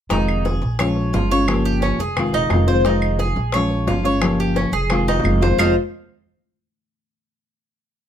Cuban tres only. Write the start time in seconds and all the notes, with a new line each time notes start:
0.11 D#4
0.45 G#4
0.80 C#5
1.14 F4
1.31 C#5
1.65 G4
1.82 C#4
2.00 G#4
2.34 D#4
2.68 C5
2.86 D#4
3.19 G#4
3.54 C#5
3.88 F4
4.05 C#5
4.40 G4
4.56 C#4
4.73 G#4
5.08 D#4
5.42 C5
5.58 F4 C5 D#5